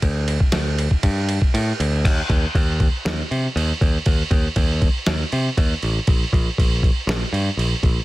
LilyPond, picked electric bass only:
\new Staff \with { instrumentName = "Picked electric bass" } { \clef bass \time 4/4 \key c \dorian \tempo 4 = 119 d,4 d,4 g,4 a,8 d,8 | ees,8 ees,8 ees,4 ees,8 c8 ees,8 ees,8 | ees,8 ees,8 ees,4 ees,8 c8 ees,8 a,,8 | bes,,8 bes,,8 bes,,4 bes,,8 g,8 bes,,8 bes,,8 | }